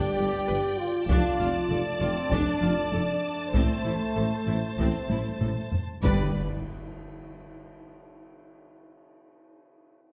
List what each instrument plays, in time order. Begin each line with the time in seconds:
Already playing: woodwind section B3 D4 G4 D5, viola section D4, french horn section G4, violin section D5 G5
0.17 double bass section G1, tuba G1, cello section G2, viola section G4
0.47 tuba G1, double bass section G1, cello section G2, viola section B4
0.78 french horn section F4
1.08 double bass section F1, tuba F1, cello section F2, woodwind section A3 D4 A4 D5, viola section D4, french horn section F4, violin section D5 A5, taiko
1.39 double bass section F1, tuba F1, cello section F2, viola section F4
1.70 double bass section F1, tuba F1, cello section F2, viola section A4
2.00 tuba F1, double bass section F1, cello section F2, french horn section C4, viola section F4
2.30 tuba F1, double bass section F1, cello section F2, viola section D4, french horn section D4, taiko
2.61 double bass section F1, tuba F1, cello section F2, viola section F4
2.91 double bass section F1, tuba F1, cello section F2, french horn section D4, viola section A4
3.53 double bass section A1, tuba A1, cello section A2, french horn section A3, viola section C4, woodwind section E4 C5, violin section C5, taiko
3.84 double bass section A1, tuba A1, cello section A2, viola section E4
4.15 double bass section A1, tuba A1, cello section A2, viola section A4
4.46 double bass section A1, tuba A1, cello section A2, viola section E4
4.77 double bass section A1, tuba A1, cello section A2, viola section C4, taiko
5.09 double bass section A1, tuba A1, cello section A2, viola section E4, taiko high
5.41 double bass section A1, tuba A1, cello section A2, viola section A4, taiko low-mid
5.72 taiko low
6.02 double bass section G1, tuba G1, timpani G2, cello section G2, french horn section G3, woodwind section B3 D4 G4 D5, viola section B4, violin section B4 D5, taiko, impact